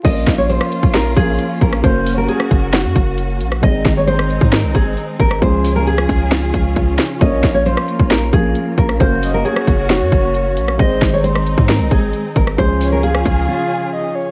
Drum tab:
CC |x---------------|----------------|----------------|----------------|
HH |x-x-x-x-x-x-x-x-|x-o-x-x-x-x-x-x-|x-x-x-x-x-x-x-x-|x-o-x-x-x-x-x-x-|
SD |--o--r--o------r|-----r--o------r|--o--r--o------r|-----r--o-----o-|
BD |o-o----o--o---o-|o-----o---o-----|o-o----o--o---o-|o-----o---o-o---|

CC |----------------|----------------|----------------|----------------|
HH |x-x-x-x-x-x-x-x-|x-o-x-x-x-x-x-x-|x-x-x-x-x-x-x-x-|x-o-x-x---------|
SD |--o--r--o------r|-----r--o------r|--o--r--o------r|-----r----------|
BD |o-o----o--o---o-|o-----o---o-----|o-o----o--o---o-|o-----o---------|